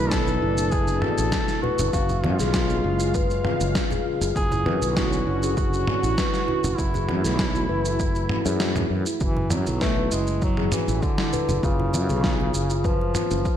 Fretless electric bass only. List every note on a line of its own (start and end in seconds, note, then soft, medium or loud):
0.00 0.38 B1 loud
0.42 0.99 F#1 medium
1.19 1.31 A1 medium
1.79 1.91 F#1 loud
1.94 2.26 F#1 loud
2.24 2.37 F#2 loud
2.40 2.81 B1 loud
2.84 3.41 F#1 medium
3.61 3.73 F#1 medium
4.21 4.33 F#1 loud
4.36 4.68 F#1 loud
4.66 4.79 F#2 loud
4.82 5.23 B1 loud
5.27 5.84 F#1 medium
6.03 6.15 A1 medium
6.64 6.76 F#1 loud
6.78 7.10 F#1 loud
7.09 7.22 F#2 loud
7.25 7.65 B1 loud
7.69 8.26 F#1 medium
8.46 8.87 F#2 loud
8.90 9.04 F#2 medium
9.21 9.52 F#1 loud
9.51 9.64 F#2 loud
9.67 10.08 B1 loud
10.12 10.69 F#1 medium
10.88 11.00 A1 medium
11.49 11.61 F#1 loud
11.63 11.95 F#1 loud
11.94 12.07 F#2 loud
12.10 12.51 B1 loud
12.55 13.11 F#1 medium
13.31 13.43 F#1 medium